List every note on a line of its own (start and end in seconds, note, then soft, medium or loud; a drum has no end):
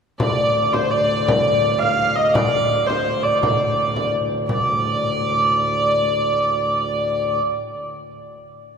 0.20 4.47 D2 medium
0.20 4.48 A2 medium
0.20 0.73 D5 medium
0.20 frame drum medium
0.73 0.91 C5 medium
0.73 frame drum medium
0.91 1.26 D5 medium
1.10 frame drum soft
1.26 1.79 D5 medium
1.26 frame drum medium
1.79 2.16 F5 medium
1.79 frame drum medium
2.16 2.35 D#5 medium
2.16 frame drum soft
2.34 2.86 D5 loud
2.34 frame drum medium
2.86 3.24 C5 medium
2.86 frame drum medium
3.23 3.41 D5 medium
3.23 frame drum soft
3.41 4.09 D5 medium
3.41 frame drum medium
3.79 frame drum soft
3.96 frame drum medium
4.13 frame drum soft
4.49 7.40 D2 medium
4.49 7.40 A2 medium
4.49 7.37 D5 medium
4.49 frame drum medium